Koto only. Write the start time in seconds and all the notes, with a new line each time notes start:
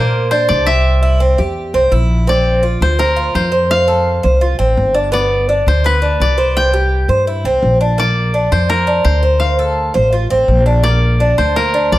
Already playing: C5 D5
0.31 C5
0.49 D5
0.66 E5
2.29 D5
2.82 C5
2.99 A#4
3.35 C5
3.71 F5
5.13 D5
5.68 C5
5.86 B4
6.21 D5
6.57 G5
8.00 D5
8.52 C5
8.70 A#4
9.05 C5
9.40 F5
10.83 D5
11.38 C5
11.56 A#4
11.92 D5